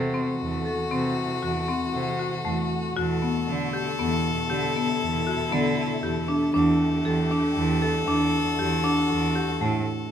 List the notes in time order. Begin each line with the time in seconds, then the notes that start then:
Already playing: C3 E3 A3 F#4 A4
0.14 C4
0.39 E2
0.65 A4
0.90 C3 C4
1.42 E2 F#4
1.68 C4
1.93 C3
2.19 F#4
2.45 E2 A3
2.96 E2 B2 A3 F#4 A4
3.22 B3
3.47 D3
3.73 G4
3.98 E2 B3
4.49 D3 G4
4.75 B3 E4
5.00 E2
5.27 F#4
5.51 D3 B3
6.03 E2 G4
6.28 D4
6.53 E2 D3 D4 G4 A4
7.04 E2 A4
7.31 D4
7.56 E2
7.82 A4
8.06 E2 D4
8.33 F#4
8.58 E2 G4
8.84 D4
9.09 E2
9.35 G4
9.61 A2 A3